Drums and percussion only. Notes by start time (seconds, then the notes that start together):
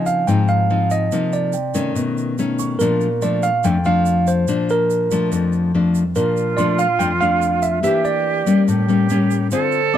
0.06 shaker
0.28 shaker
0.48 shaker
0.90 shaker
1.12 shaker
1.33 shaker
1.53 shaker
1.74 shaker
1.96 shaker
2.17 shaker
2.38 shaker
2.59 shaker
2.80 shaker
3.01 shaker
3.22 shaker
3.43 shaker
3.64 shaker
3.84 shaker
4.06 shaker
4.27 shaker
4.48 shaker
4.69 shaker
4.90 shaker
5.11 shaker
5.32 shaker
5.53 shaker
5.95 shaker
6.15 shaker
6.37 shaker
6.58 shaker
6.79 shaker
7.00 shaker
7.21 shaker
7.42 shaker
7.62 shaker
7.84 shaker
8.05 shaker
8.47 shaker
8.68 shaker
8.89 shaker
9.09 shaker
9.31 shaker
9.51 shaker
9.72 shaker